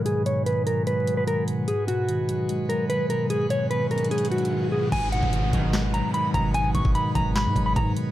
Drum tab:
CC |------------------------------------------------|------------------------------------------------|------------------------------------------------|x-----------------------------------------------|
HH |x-----x-----x-----x-----x-----x-----x-----x-----|x-----x-----x-----x-----x-----x-----x-----x-----|x-----x-----x-----x-x-x-x-x-x-x-x-x-------------|x-----x-----x-----x-----x-----x-----x-----x-----|
CP |------------------------------------------------|------------------------------------------------|------------------------------------------------|------------------------x-----------------------|
SD |------------------------------------------------|------------------------------------------------|------------------------------------------------|------------------------o-----------------------|
BD |------------------------------------------------|------------------------------------------------|------------------------------------------------|o--------o--------o-----------------------o-----|

CC |------------------------------------------------|
HH |x-----x-----x-----x-----x-----x-----x-----x-----|
CP |------------------------x-----------------------|
SD |------------------------o-----------------------|
BD |------o--o--------o-----------o-----o-----------|